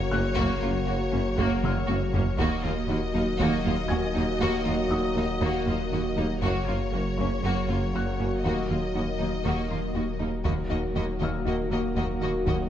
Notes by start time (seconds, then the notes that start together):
Already playing: F#1 C#3 F#3 A#3 F#4 G#4 A#4 C#5 G#5
0.11 F#1 F#2 A#3 C#4 F#4 F#6
0.35 F#1 F#2 F#3 A#3 F#4, taiko
0.61 F#1 F#2 A#3 C#4 F4
0.86 F#1 F#2 A#3 F#4
1.11 F#1 F#2 A#3 C#4
1.37 F#1 F#2 F#3 A#3 F#4, taiko
1.62 F#1 F#2 A#3 F4 F6, taiko mid
1.87 F#1 F#2 A#3 F#4, taiko high
2.13 F#1 F#2 A#3 C#4 F#4, taiko low
2.38 D#1 D#2 D#3 F#3 A#3 F#4 A#4 D#5, taiko
2.63 D#2 A#3 F4
2.88 D#2 A#3 D#4 F#4
3.14 D#2 F#3 A#3 D#4
3.39 D#2 D#3 A#3 F#4, taiko
3.64 D#2 F#3 A#3 F4
3.88 D#2 A#3 D#4 F#4 G#5 G#6
4.14 D#2 A#3 D#4
4.40 D#2 D#3 A#3 F#4
4.65 D#2 A#3 F4
4.90 D#2 A#3 D#4 F#4 D#6
5.15 D#2 F#3 A#3 D#4
5.40 D#2 D#3 A#3 F#4
5.66 D#2 F#3 A#3 F4
5.91 D#2 A#3 D#4 F#4
6.16 D#2 A#3 D#4
6.42 F#1 F#2 C#3 F#3 A#3 F#4 C#5, taiko
6.67 F#1 F#2 A#3 C#4 F4
6.92 F#1 F#2 A#3 F#4
7.18 F#1 F#2 A#3 C#4 C#6, taiko
7.43 F#1 F#2 F#3 A#3 F#4
7.68 F#1 F#2 A#3 F4
7.94 F#1 F#2 A#3 F#4 F#6
8.19 F#1 F#2 A#3 C#4 F#4
8.44 D#1 D#2 D#3 F#3 A#3 F#4 A#4 D#5
8.69 D#2 A#3 F4
8.95 D#2 A#3 D#4 F#4
9.19 D#2 F#3 A#3 D#4
9.44 D#2 D#3 A#3 F#4
9.70 D#2 F#3 A#3 F4
9.94 D#2 A#3 D#4 F#4
10.19 D#2 A#3 D#4
10.44 D#1 D#2 D#3 F#3 A#3 F#4 A#4 D#5, taiko
10.70 D#2 A#3 D#4 F#4 D#5
10.95 D#2 A#3 F#4 D#5
11.20 D#2 D#3 A#3 F#4 D#5 F5 F6
11.45 D#2 A#3 D#4 F#4 D#5
11.70 D#2 A#3 F#4 D#5
11.95 D#2 D#3 A#3 F#4 D#5, taiko
12.21 D#2 A#3 F#4 D#5
12.46 D#2 D#3 A#3 F#4 D#5, taiko